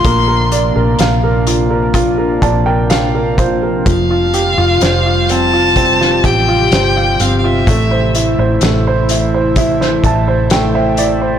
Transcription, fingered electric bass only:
X:1
M:4/4
L:1/16
Q:1/4=63
K:Bblyd
V:1 name="Fingered electric bass" clef=bass
B,,,3 B,,, B,,,6 B,,,6 | F,,,3 F,,, F,,,6 A,,,2 G,,,2 G,,,2 | A,,,3 A,,, A,,,6 A,,,6 |]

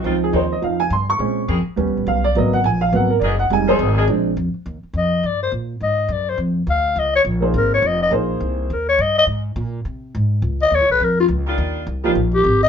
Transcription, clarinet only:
X:1
M:4/4
L:1/8
Q:"Swing" 1/4=208
K:Eb
V:1 name="Clarinet"
z8 | z8 | z8 | z8 |
z2 e2 d c z2 | e2 d c z2 f2 | e _d z2 B d e e | z4 B _d e e |
z8 | z e _d _c B F z2 | z4 z G2 e |]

